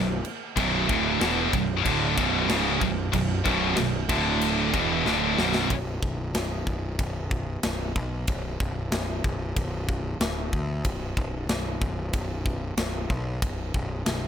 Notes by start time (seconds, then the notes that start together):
Already playing: B0 B1 F#2
0.25 crash
0.56 B0 B1 F#2 B2, kick, crash
0.88 D1 D2 A2 D3, kick, crash
1.20 E1 E2 B2 E3, snare, crash
1.53 B0 B1 F#2, kick, crash
1.84 D1 D2 A2 D3, kick, crash
2.17 B0 B1 F#2 B2, kick, crash
2.49 C#1 C#2 G#2 C#3, snare, crash
2.81 B0 B1 F#2, kick, crash
3.12 B0 B1 F#2, kick, crash
3.44 B0 B1 F#2 B2, kick, crash
3.77 B0 B1 F#2, snare, crash
4.09 D1 D2 A2 D3, kick, crash
4.41 crash
4.74 E1 E2 B2 E3, kick, crash
5.05 D1 D2 A2 D3, snare
5.37 B0 B1 F#2 B2, snare
5.54 snare
5.70 B0, kick, ride bell
6.02 B0, kick
6.34 B0, snare, ride bell
6.67 B0, kick
6.99 B0, kick, ride bell
7.31 kick
7.63 B0, snare, ride bell
7.95 B1, kick
8.27 B0, kick, ride bell
8.60 B0, kick
8.92 B0, snare, ride bell
9.24 B0, kick
9.56 B0, kick, ride bell
9.89 kick
10.20 D1, snare, ride bell
10.53 D2, kick
10.85 B0, kick, ride bell
11.17 B0, kick
11.47 B0, snare, ride bell
11.81 B0, kick
12.13 B0, kick, ride bell
12.46 kick
12.77 B0, snare, ride bell
13.10 B1, kick
13.42 B0, kick, ride bell
13.74 B0, kick
14.06 B0, snare, ride bell